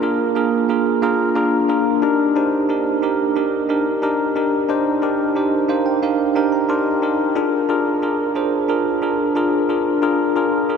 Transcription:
0.00 0.02 A#3 loud
0.00 0.23 A#3 medium
0.00 0.02 D4 loud
0.00 0.23 D4 medium
0.00 0.03 F4 loud
0.00 0.23 F4 medium
0.00 0.03 G#4 loud
0.00 0.24 G#4 medium
0.00 0.03 A#4 loud
0.00 0.24 A#4 medium
0.35 0.56 A#3 medium
0.35 0.56 D4 medium
0.35 0.57 F4 medium
0.35 0.57 G#4 medium
0.35 0.57 A#4 loud
0.69 0.90 A#3 medium
0.69 0.90 D4 medium
0.69 0.90 F4 medium
0.69 0.90 G#4 medium
0.69 0.90 A#4 medium
1.02 1.23 A#3 loud
1.02 1.23 D4 loud
1.02 1.23 F4 loud
1.02 1.24 G#4 loud
1.02 1.24 A#4 loud
1.35 1.56 A#3 loud
1.35 1.57 D4 loud
1.35 1.57 F4 medium
1.35 1.57 G#4 medium
1.35 1.57 A#4 loud
1.69 1.90 A#3 medium
1.69 1.90 D4 medium
1.69 1.90 F4 medium
1.69 1.90 G#4 medium
1.69 1.90 A#4 loud
2.02 2.23 D4 loud
2.02 2.23 D#4 loud
2.02 2.23 G4 loud
2.02 2.24 A#4 loud
2.36 2.56 D4 loud
2.36 2.57 D#4 medium
2.36 2.57 G4 medium
2.36 2.57 C5 loud
2.69 2.90 D4 medium
2.69 2.90 D#4 medium
2.69 2.90 G4 medium
2.69 2.90 A#4 medium
3.02 3.23 D4 medium
3.02 3.23 D#4 medium
3.02 3.24 G4 medium
3.02 3.24 A#4 medium
3.36 3.57 D4 medium
3.36 3.57 D#4 medium
3.36 3.57 G4 medium
3.36 3.57 A#4 medium
3.69 3.90 D4 medium
3.69 3.90 D#4 medium
3.69 3.90 G4 medium
3.69 3.90 A#4 medium
4.02 4.23 D4 loud
4.02 4.23 D#4 medium
4.02 4.24 G4 medium
4.02 4.24 A#4 loud
4.36 4.56 D4 medium
4.36 4.57 D#4 medium
4.36 4.57 G4 medium
4.36 4.57 A#4 medium
4.69 4.90 D4 loud
4.69 4.90 D#4 loud
4.69 4.90 G4 loud
4.69 4.90 C5 loud
5.02 5.23 D4 loud
5.02 5.23 D#4 loud
5.02 5.23 G4 loud
5.02 5.24 A#4 loud
5.35 5.56 D4 medium
5.35 5.57 D#4 medium
5.35 5.57 G4 medium
5.35 5.57 C5 medium
5.69 5.90 D4 medium
5.69 5.90 D#4 medium
5.69 5.90 G4 medium
5.69 5.90 C5 loud
5.69 5.85 F5 medium
5.86 6.01 G5 medium
6.02 6.23 D4 medium
6.02 6.23 D#4 medium
6.02 6.24 G4 medium
6.02 6.24 A#4 medium
6.02 6.34 F5 medium
6.35 6.56 D4 medium
6.35 6.57 D#4 medium
6.35 6.57 G4 medium
6.35 6.57 A#4 medium
6.35 6.51 G5 medium
6.52 6.68 A#5 medium
6.69 6.90 D4 loud
6.69 6.90 D#4 medium
6.69 6.90 G4 loud
6.69 6.90 A#4 loud
6.69 7.32 C6 medium
7.02 7.23 D4 medium
7.02 7.23 D#4 medium
7.02 7.23 G4 medium
7.02 7.24 A#4 medium
7.35 7.56 D4 loud
7.35 7.57 F4 loud
7.35 7.57 G#4 loud
7.35 7.57 A#4 loud
7.69 7.90 D4 loud
7.69 7.90 F4 loud
7.69 7.90 G#4 medium
7.69 7.90 A#4 loud
8.02 8.23 D4 medium
8.02 8.23 F4 medium
8.02 8.24 G#4 medium
8.02 8.24 A#4 medium
8.35 8.56 D4 medium
8.35 8.56 F4 medium
8.35 8.57 G#4 medium
8.35 8.57 C5 medium
8.69 8.90 D4 medium
8.69 8.90 F4 medium
8.69 8.90 G#4 medium
8.69 8.90 A#4 medium
9.02 9.23 D4 medium
9.02 9.23 F4 medium
9.02 9.23 G#4 medium
9.02 9.24 A#4 medium
9.35 9.56 D4 loud
9.35 9.57 F4 medium
9.35 9.57 G#4 medium
9.35 9.57 A#4 loud
9.69 9.90 D4 medium
9.69 9.90 F4 medium
9.69 9.90 G#4 medium
9.69 9.90 A#4 medium
10.02 10.23 D4 loud
10.02 10.23 F4 loud
10.02 10.23 G#4 loud
10.02 10.24 A#4 loud
10.36 10.57 D4 loud
10.36 10.57 F4 loud
10.36 10.57 G#4 medium
10.36 10.57 A#4 loud
10.69 10.77 D4 medium
10.69 10.77 F4 medium
10.69 10.77 G#4 medium
10.69 10.77 A#4 medium

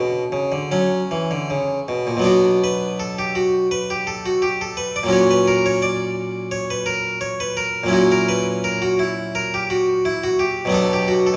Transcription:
0.00 0.22 B2 soft
0.00 0.68 D4 soft
0.00 1.14 F#4 medium
0.32 0.51 C#3 soft
0.52 0.71 D3 soft
0.71 1.00 F#3 medium
0.71 2.22 C#4 soft
1.11 1.29 E3 soft
1.31 1.49 D3 soft
1.50 1.78 C#3 soft
1.88 2.07 B2 soft
2.07 2.25 A#2 soft
2.17 5.04 B2 medium
2.17 5.04 F#3 soft
2.21 5.06 B3 soft
2.21 5.07 D4 soft
2.26 2.58 F#4 medium
2.64 3.00 B4 medium
3.00 3.18 A4 medium
3.19 3.36 G4 medium
3.35 3.66 F#4 medium
3.71 3.89 B4 medium
3.90 4.08 G4 medium
4.07 4.25 A4 medium
4.26 4.43 F#4 medium
4.42 4.60 G4 medium
4.61 4.78 A4 medium
4.77 4.95 B4 medium
4.96 5.13 D5 medium
5.03 7.82 A#2 medium
5.03 7.85 F#3 soft
5.08 7.87 C#4 soft
5.08 7.88 F#4 soft
5.13 5.30 C#5 medium
5.31 5.48 B4 medium
5.48 5.65 A#4 medium
5.66 5.83 C#5 medium
5.82 6.52 D5 medium
6.51 6.69 C#5 medium
6.70 6.88 B4 medium
6.86 7.17 A#4 medium
7.21 7.39 C#5 medium
7.40 7.58 B4 medium
7.57 7.87 A#4 medium
7.84 10.66 A#2 medium
7.84 10.66 F#3 soft
7.88 10.68 C#4 soft
7.88 8.98 E4 soft
7.93 8.11 F#4 medium
8.12 8.29 A#4 medium
8.29 8.64 B4 medium
8.64 8.82 A#4 medium
8.82 9.00 F#4 medium
8.99 9.35 E4 medium
9.35 9.53 A#4 medium
9.54 9.71 G4 medium
9.70 10.05 F#4 medium
10.05 10.23 E4 medium
10.24 10.40 F#4 medium
10.39 10.74 G4 medium
10.65 11.33 B2 medium
10.65 11.35 F#3 soft
10.69 11.37 B3 soft
10.69 11.37 D4 soft
10.74 10.91 A4 loud
10.93 11.10 G4 medium
11.08 11.25 F#4 medium
11.27 11.37 A4 medium

